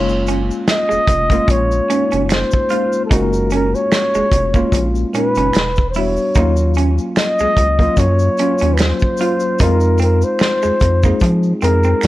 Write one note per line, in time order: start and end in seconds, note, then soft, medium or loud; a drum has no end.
0.00 0.50 F#1 loud
0.00 0.95 G#3 medium
0.00 0.95 A#3 medium
0.00 0.96 C#4 medium
0.00 0.96 F4 loud
0.00 0.27 C#5 loud
0.09 shaker soft
0.26 0.40 C#4 medium
0.26 closed hi-hat medium
0.26 shaker medium
0.51 shaker soft
0.67 1.52 D#5 loud
0.67 finger snap medium
0.67 snare loud
0.67 closed hi-hat loud
0.67 shaker medium
0.89 0.98 F1 soft
0.89 0.99 G#3 medium
0.89 shaker soft
1.07 1.40 F1 loud
1.07 muted clean electric guitar stroke soft
1.07 kick medium
1.07 closed hi-hat medium
1.07 shaker soft
1.30 1.76 G#3 medium
1.30 1.42 A#3 medium
1.30 1.76 A#3 medium
1.30 1.77 C#4 medium
1.30 1.77 F4 medium
1.30 kick medium
1.30 closed hi-hat medium
1.30 shaker soft
1.48 1.80 A#1 loud
1.48 2.24 C#5 loud
1.48 muted clean electric guitar stroke soft
1.48 kick medium
1.48 closed hi-hat medium
1.48 shaker medium
1.71 shaker soft
1.89 2.52 G#3 medium
1.89 2.52 A#3 medium
1.89 2.02 C#4 medium
1.89 2.53 C#4 medium
1.89 2.53 D#4 medium
1.89 closed hi-hat medium
1.89 shaker soft
2.11 2.44 F#1 medium
2.11 2.22 C#4 medium
2.11 closed hi-hat medium
2.11 shaker medium
2.24 2.31 C#5 medium
2.29 3.04 C5 medium
2.29 finger snap medium
2.29 snare loud
2.29 closed hi-hat medium
2.29 shaker medium
2.51 kick medium
2.51 shaker medium
2.69 3.01 G#3 medium
2.69 3.02 A#3 medium
2.69 3.02 C#4 medium
2.69 2.83 F4 medium
2.69 3.03 F4 medium
2.69 closed hi-hat medium
2.69 shaker medium
2.92 shaker soft
3.05 3.14 A4 medium
3.10 3.75 F#1 loud
3.10 4.19 G#3 medium
3.10 4.19 A#3 medium
3.10 4.20 C#4 medium
3.10 3.23 D#4 medium
3.10 4.20 F#4 medium
3.10 3.52 A#4 medium
3.10 kick loud
3.10 closed hi-hat medium
3.10 shaker medium
3.33 shaker soft
3.50 3.64 C#4 medium
3.50 3.77 A#4 medium
3.50 closed hi-hat medium
3.50 shaker medium
3.75 4.88 C#5 loud
3.75 shaker soft
3.92 finger snap medium
3.92 snare loud
3.92 closed hi-hat loud
3.92 shaker medium
4.15 4.22 F1 soft
4.15 4.25 G#3 medium
4.15 shaker medium
4.32 4.64 F1 medium
4.32 muted clean electric guitar stroke soft
4.32 kick medium
4.32 closed hi-hat medium
4.32 shaker soft
4.54 5.00 G#3 medium
4.54 5.00 A#3 medium
4.54 4.66 A#3 medium
4.54 5.01 C#4 medium
4.54 5.01 F4 medium
4.54 kick medium
4.54 shaker medium
4.72 5.05 A#1 loud
4.72 muted clean electric guitar stroke soft
4.72 kick medium
4.72 closed hi-hat medium
4.72 shaker medium
4.96 shaker soft
5.13 5.54 A#2 medium
5.13 5.54 G#3 medium
5.13 5.27 C#4 medium
5.13 5.55 C#4 medium
5.13 5.55 D#4 medium
5.13 5.85 B4 loud
5.13 closed hi-hat medium
5.13 shaker soft
5.35 5.51 F#1 loud
5.35 5.47 C#4 medium
5.35 closed hi-hat medium
5.35 shaker soft
5.53 6.18 E1 medium
5.53 finger snap medium
5.53 snare loud
5.53 closed hi-hat medium
5.53 shaker medium
5.76 kick medium
5.76 shaker soft
5.90 5.98 C5 medium
5.94 6.26 G3 medium
5.94 6.27 B3 medium
5.94 6.28 D4 medium
5.94 6.08 E4 medium
5.94 6.77 C#5 medium
5.94 open hi-hat soft
5.94 shaker medium
5.98 6.28 F#4 medium
6.17 shaker soft
6.35 6.99 D#2 loud
6.35 7.44 F#3 medium
6.35 7.44 A#3 medium
6.35 7.45 C#4 medium
6.35 6.48 D#4 loud
6.35 7.45 F4 medium
6.35 kick loud
6.35 closed hi-hat medium
6.35 shaker medium
6.57 shaker medium
6.74 6.89 C#4 medium
6.74 closed hi-hat medium
6.74 shaker medium
6.98 shaker soft
7.16 8.01 D#5 loud
7.16 finger snap medium
7.16 snare loud
7.16 closed hi-hat loud
7.16 shaker medium
7.39 7.47 C#2 medium
7.39 7.50 G#3 medium
7.39 shaker soft
7.57 7.89 C#2 loud
7.57 muted clean electric guitar stroke soft
7.57 kick medium
7.57 closed hi-hat medium
7.57 shaker soft
7.79 8.24 F#3 medium
7.79 7.90 A#3 medium
7.79 8.25 A#3 medium
7.79 8.25 C#4 medium
7.79 8.26 F4 medium
7.79 kick medium
7.79 closed hi-hat soft
7.79 shaker soft
7.97 8.29 F#2 medium
7.97 8.76 C#5 loud
7.97 muted clean electric guitar stroke soft
7.97 kick medium
7.97 closed hi-hat medium
7.97 shaker medium
8.19 shaker soft
8.37 9.02 F#3 medium
8.37 9.02 A#3 medium
8.37 8.51 C#4 medium
8.37 9.02 C#4 medium
8.37 closed hi-hat medium
8.37 shaker soft
8.42 9.03 F4 medium
8.59 8.93 D#2 medium
8.59 8.71 C#4 medium
8.59 closed hi-hat medium
8.59 shaker medium
8.74 8.81 B4 medium
8.74 finger snap medium
8.74 shaker medium
8.79 9.62 C5 medium
8.79 snare loud
8.79 closed hi-hat medium
9.00 kick medium
9.00 shaker soft
9.17 9.51 F#3 medium
9.17 9.51 A#3 medium
9.17 9.51 C#4 medium
9.17 9.33 F4 medium
9.17 closed hi-hat medium
9.17 shaker medium
9.22 9.52 F4 medium
9.40 shaker soft
9.59 10.24 F2 loud
9.59 9.67 F#3 medium
9.59 10.68 C4 medium
9.59 9.72 D#4 medium
9.59 10.69 D#4 medium
9.59 10.00 A#4 loud
9.59 kick loud
9.59 closed hi-hat medium
9.59 shaker medium
9.63 10.71 G#3 medium
9.63 10.70 F4 loud
9.80 shaker medium
9.98 10.12 C4 medium
9.98 shaker medium
10.02 10.26 A#4 medium
10.02 closed hi-hat medium
10.22 11.37 C5 medium
10.22 shaker soft
10.39 finger snap medium
10.39 snare loud
10.39 closed hi-hat loud
10.39 shaker medium
10.62 10.71 F2 medium
10.62 10.73 G#3 medium
10.62 shaker soft
10.80 11.13 F2 medium
10.80 muted clean electric guitar stroke soft
10.80 kick medium
10.80 closed hi-hat medium
10.80 shaker soft
11.03 11.49 G#3 medium
11.03 11.15 A#3 medium
11.03 11.49 C4 medium
11.03 11.50 D#4 medium
11.03 11.50 G#4 medium
11.03 kick medium
11.03 shaker medium
11.20 11.53 F3 loud
11.20 muted clean electric guitar stroke soft
11.20 kick medium
11.20 closed hi-hat medium
11.20 shaker medium
11.43 shaker soft
11.62 11.94 F2 medium
11.62 12.07 G#3 medium
11.62 11.75 C4 medium
11.62 12.07 C4 medium
11.62 12.07 D#4 medium
11.62 12.07 G#4 medium
11.62 12.07 A#4 medium
11.62 closed hi-hat medium
11.62 shaker soft
11.84 11.95 C4 medium
11.84 shaker soft
12.01 12.07 F2 medium
12.01 finger snap medium
12.01 closed hi-hat medium
12.01 shaker medium